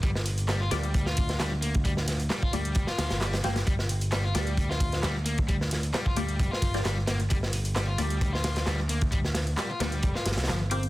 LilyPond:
<<
  \new Staff \with { instrumentName = "Synth stab" } { \time 4/4 \key g \minor \tempo 4 = 132 r4. <bes f' g' d''>16 r2 r16 | r4. <bes f' g' d''>16 r4. r16 <bes f' g' g''>16 r16 | r4. <bes f' g' d''>16 r2 r16 | r4. <bes f' g' d''>16 r4 <bes f' g' d''>16 r4 |
r4. <bes f' g' d''>16 r2 r16 | r4. <bes f' g' d''>16 r4. r16 <bes f' g' g''>16 r16 | }
  \new Staff \with { instrumentName = "Overdriven electric guitar" } { \clef bass \time 4/4 \key g \minor g16 r8. g16 f'16 g8. f'8. g16 r16 bes16 r16 | g16 r8. g16 f'16 g8. f'8. g16 r16 bes16 r16 | g16 r8. g16 f'16 g8. f'8. g16 r16 bes16 r16 | g16 r8. g16 f'16 g8. f'8. g16 r16 bes16 r16 |
g16 r8. g16 f'16 g8. f'8. g16 r16 bes16 r16 | g16 r8. g16 f'16 g8. f'16 r8 f16 r16 c'16 r16 | }
  \new Staff \with { instrumentName = "Picked electric bass" } { \clef bass \time 4/4 \key g \minor g,,4. d,4. d,4~ | d,4 r8 d,8 f,,16 r16 d,16 g,,8. g,,8 | g,,4. d,4. d,4~ | d,4 r8 d,8 f,,16 r16 g,,8 g,,4 |
g,,4. d,4. d,4~ | d,4 r8 d,8 f,,16 r16 g,,16 c,16 g,,4 | }
  \new DrumStaff \with { instrumentName = "Drums" } \drummode { \time 4/4 <hh bd>16 sn16 <hh cymr>16 hh16 <hc hh sn>8 <hh cymr sn>16 hh16 <hh bd>16 sn16 <hh bd cymr>16 <hh sn>16 <hc hh sn>8 <hh cymr>16 <hh bd>16 | <hh bd>16 sn16 <hh cymr sn>16 hh16 <hc hh sn>16 bd16 <hh cymr>16 hh16 <hh bd>16 sn16 <hh cymr sn>16 <hh sn>16 <hc hh sn>16 <hh sn>16 <hh cymr sn>16 <hh sn>16 | <hh bd>16 sn16 <hh cymr>16 hh16 <hc hh sn>8 <hh cymr sn>16 hh16 <hh bd>16 sn16 <hh bd cymr>16 <hh sn>16 <hc hh sn>8 <hh cymr>16 <hh bd>16 | <hh bd>16 sn16 <hh cymr sn>16 hh16 <hc hh sn>16 bd16 <hh cymr>16 hh16 <hh bd>16 sn16 <hh bd cymr>16 <hh sn>16 <hc hh sn>8 <hh cymr sn>16 hh16 |
<hh bd>16 sn16 <hh cymr>16 hh16 <hc hh sn>8 <hh cymr>16 hh16 <hh bd>16 sn16 <hh cymr sn>16 <hh sn>16 <hc hh sn>8 <hh cymr>16 <hh bd>16 | <hh bd>16 sn16 <hh cymr sn>16 hh16 <hc hh sn>8 <hh cymr sn>16 hh16 <hh bd>16 sn16 <hh cymr sn>32 <hh sn>32 <hh sn>32 <hh sn>32 <hc hh sn>8 <hh cymr>16 hh16 | }
>>